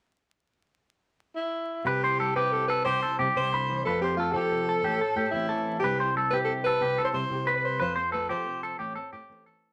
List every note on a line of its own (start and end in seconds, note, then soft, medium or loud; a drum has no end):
1.35 1.87 E4 medium
1.85 2.32 C2 medium
1.85 2.52 C3 medium
1.85 2.35 G4 medium
1.85 2.02 B4 medium
2.04 2.84 E4 medium
2.04 2.19 C5 medium
2.20 3.19 G3 medium
2.20 2.35 A4 medium
2.36 2.83 C3 medium
2.36 2.68 G4 medium
2.36 2.85 G4 soft
2.36 2.54 B4 medium
2.52 2.84 C3 medium
2.52 2.67 A4 medium
2.68 2.85 A4 medium
2.68 2.84 B4 medium
2.85 3.01 C2 medium
2.85 3.36 C3 medium
2.85 3.01 G4 medium
2.85 3.16 C5 loud
3.03 3.84 E4 medium
3.03 3.18 A4 medium
3.19 3.27 C3 medium
3.19 3.86 G3 medium
3.19 3.50 G4 medium
3.36 3.82 C2 medium
3.36 3.53 C3 medium
3.36 3.82 C5 loud
3.53 3.69 D3 medium
3.53 3.84 B5 medium
3.70 3.85 E3 medium
3.85 4.32 F2 medium
3.85 4.83 F3 medium
3.85 4.16 A3 medium
3.85 4.02 C4 medium
3.85 4.35 F4 medium
3.85 4.00 A4 medium
3.85 4.02 B4 medium
4.01 5.33 C4 medium
4.01 4.16 G4 medium
4.01 4.19 C5 medium
4.17 4.82 A3 medium
4.17 4.34 F4 medium
4.17 4.35 A4 medium
4.32 4.81 F3 medium
4.32 4.83 F4 medium
4.32 5.30 A4 medium
4.36 4.67 G4 medium
4.51 4.82 C3 medium
4.69 4.84 A4 medium
4.83 4.99 A1 medium
4.83 5.82 A2 medium
4.83 5.00 G4 medium
5.01 5.16 A4 medium
5.15 5.24 A2 medium
5.15 5.48 G4 medium
5.15 muted nylon-string guitar stroke medium
5.31 5.80 A1 medium
5.31 5.84 C4 medium
5.31 5.78 E4 medium
5.49 5.81 E3 medium
5.49 5.81 A4 medium
5.79 6.30 C2 medium
5.79 6.48 C3 medium
5.79 6.13 G3 medium
5.79 6.12 G4 medium
5.84 5.99 E4 medium
5.84 5.99 B4 medium
6.00 6.80 E4 medium
6.00 6.16 C5 medium
6.14 7.12 G3 medium
6.14 6.32 A4 medium
6.30 6.79 C3 medium
6.30 6.80 G4 medium
6.30 6.65 G4 medium
6.30 6.38 B4 medium
6.45 6.53 A4 medium
6.50 6.80 C3 medium
6.64 6.82 A4 medium
6.64 7.03 B4 loud
6.81 6.97 C2 medium
6.81 7.46 C3 medium
6.81 6.98 G4 medium
6.98 7.79 E4 medium
6.98 7.14 A4 medium
7.04 7.09 C5 medium
7.14 7.22 C3 medium
7.14 7.80 G3 medium
7.14 7.57 C5 medium
7.30 7.78 C2 medium
7.30 7.79 G4 medium
7.47 7.79 C3 medium
7.47 7.79 B4 medium
7.55 7.64 B4 medium
7.65 7.80 C5 medium
7.79 8.28 F2 medium
7.79 8.77 F3 medium
7.79 7.95 B4 medium
7.79 8.04 C5 medium
7.96 8.96 C4 medium
7.96 8.12 C5 medium
8.12 8.78 A3 medium
8.12 8.29 A4 medium
8.12 8.29 B4 medium
8.29 8.77 F3 medium
8.29 8.61 G4 medium
8.29 9.31 A4 medium
8.29 8.76 C5 medium
8.47 8.78 C3 medium
8.63 8.78 A4 medium
8.78 8.95 A1 medium
8.78 9.73 A2 medium
8.78 8.95 G4 medium
8.95 9.73 C4 medium
8.95 9.12 A4 medium
9.12 9.21 A2 medium
9.12 9.73 A3 medium
9.12 9.44 G4 medium
9.29 9.73 A1 medium
9.29 9.73 C5 medium
9.46 9.73 E3 medium
9.46 9.73 A4 medium